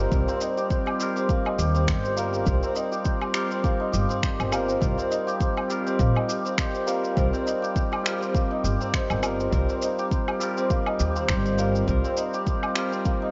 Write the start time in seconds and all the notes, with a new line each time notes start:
Already playing: G3 A#3 C4 D#4 F4 G4 A#4 C5
0.00 C4
0.10 C2 G3 C4 F4, kick, shaker
0.15 A#4
0.28 C4, shaker
0.41 D#4, shaker
0.57 G4, shaker
0.70 C5, kick, shaker
0.86 G4, low woodblock
0.98 G3 C4 F4 G4, shaker
1.03 A#4
1.16 C4, shaker
1.29 A#3, kick, shaker
1.45 D#4, low woodblock
1.58 D#2 G4, shaker
1.75 C4, shaker
1.87 G1 C5, finger snap, kick, shaker
2.03 C4, shaker
2.16 G3 A#3 C4 F4 A#4, shaker
2.33 C4, shaker
2.45 C2 G3 C4 F4, kick, shaker
2.49 A#4
2.63 C4, shaker
2.75 D#4, shaker
2.92 G4, shaker
3.05 C5, kick, shaker
3.21 G4, low woodblock
3.33 G3 C4 F4 G4, finger snap, shaker
3.37 A#4
3.51 C4, shaker
3.64 A#3, kick, shaker
3.80 D#4
3.92 G1 G4, shaker
4.09 C4, shaker
4.22 C5, finger snap, kick, shaker
4.39 G1 C4, low woodblock, shaker
4.52 G3 A#3 C4 F4 A#4, low woodblock, shaker
4.68 C4, shaker
4.79 C2 G3 C4 F4, kick, shaker
4.84 A#4
4.98 C4, shaker
5.10 D#4, shaker
5.27 G4, shaker
5.40 C5, kick, shaker
5.57 G4, low woodblock
5.68 G3 C4 F4 G4 A#4, shaker
5.87 C4, shaker
5.99 A#1 A#3, kick, shaker
6.15 D#4, low woodblock
6.28 G4, shaker
6.45 C4, shaker
6.58 C5, finger snap, kick, shaker
6.74 C4, shaker
6.87 G3 A#3 C4 F4 A#4, shaker
7.04 C4, shaker
7.16 C2 G3 C4 F4 A#4, kick, shaker
7.33 C4, shaker
7.46 D#4, shaker
7.62 G4, shaker
7.75 C5, kick, shaker
7.92 G4, low woodblock
8.03 G3 C4 F4 G4, finger snap, shaker
8.08 A#4
8.21 C4, shaker
8.34 A#3, kick, shaker
8.51 D#4
8.64 G1 G4, shaker
8.80 C4, shaker
8.93 C5, finger snap, kick, shaker
9.10 G1 C4, low woodblock, shaker
9.22 G3 A#3 C4 F4 A#4, low woodblock, shaker
9.40 C4, shaker
9.50 C2 G3 C4 F4 A#4, kick, shaker
9.69 C4, shaker
9.82 D#4, shaker
9.99 G4, shaker
10.11 C5, kick, shaker
10.28 G4, low woodblock
10.39 G3 C4 F4 G4, shaker
10.43 A#4
10.57 C4, shaker
10.70 A#3, kick, shaker
10.86 D#4, low woodblock
10.99 D#2 G4, shaker
11.16 C4, shaker
11.28 G1 C5, finger snap, kick, shaker
11.45 C4, shaker
11.58 G3 A#3 C4 F4 A#4, shaker
11.75 C4, shaker
11.86 C2 G3 C4 F4 A#4, kick, shaker
12.04 C4, shaker
12.17 D#4, shaker
12.34 G4, shaker
12.46 C5, kick, shaker
12.63 G4, low woodblock
12.74 G3 C4 F4 G4, finger snap, shaker
12.78 A#4
12.92 C4, shaker
13.05 A#3, kick, shaker
13.22 D#4